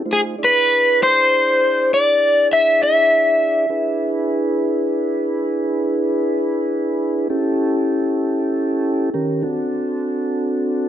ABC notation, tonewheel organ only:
X:1
M:12/8
L:1/8
Q:3/8=66
K:Edor
V:1 name="Tonewheel organ"
[A,^D=F=c] [=DE^Gd]8- [DEGd]3 | [DE^GB]12 | [CEGA]6 [^D,CG_B] [=C=DFA]4- [CDFA] |]